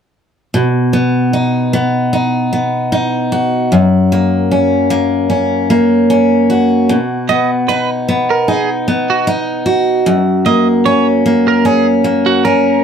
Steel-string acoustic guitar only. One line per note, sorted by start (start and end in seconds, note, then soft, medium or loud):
0.54 3.72 B2 medium
0.93 1.72 B3 soft
1.33 2.12 D#4 soft
1.73 2.51 B3 soft
2.13 2.91 D#4 soft
2.53 3.81 B3 soft
2.92 3.80 D#4 medium
3.32 6.49 F#4 soft
3.72 6.89 F#2 medium
4.12 4.89 A#3 soft
4.51 5.28 C#4 soft
4.90 5.69 A#3 medium
5.30 6.09 C#4 soft
5.70 6.98 A#3 medium
6.10 6.98 C#4 medium
6.50 9.65 F#4 soft
6.89 10.07 B2 medium
7.29 8.07 B3 soft
7.69 8.47 D#4 soft
8.08 8.87 B3 soft
8.48 9.26 D#4 soft
8.88 10.16 B3 soft
9.27 10.15 D#4 medium
9.66 12.84 F#4 medium
10.06 12.84 F#2 medium
10.46 11.24 A#3 soft
10.86 11.64 C#4 soft
11.26 12.03 A#3 soft
11.65 12.44 C#4 soft
12.04 12.84 A#3 soft
12.45 12.84 C#4 medium